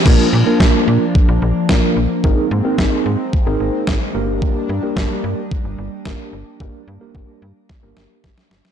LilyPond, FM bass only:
\new Staff \with { instrumentName = "FM bass" } { \clef bass \time 4/4 \key g \phrygian \tempo 4 = 110 bes,,16 r16 bes,16 r16 bes,,16 r16 bes,16 r8 bes,,16 bes,,16 r16 bes,,16 r16 bes,,16 r16 | aes,,16 r16 aes,16 r16 aes,,16 r16 aes,16 r8 aes,,16 aes,,16 r16 aes,,16 r16 g,,8~ | g,,16 r16 g,16 r16 g,,16 r16 g,16 r8 g,,16 g,,16 r16 g,,16 r16 g,,16 r16 | g,,16 r16 g,16 r16 g,,16 r16 g,16 r8 g,,16 g,,16 r16 g,,16 r16 g,,16 r16 | }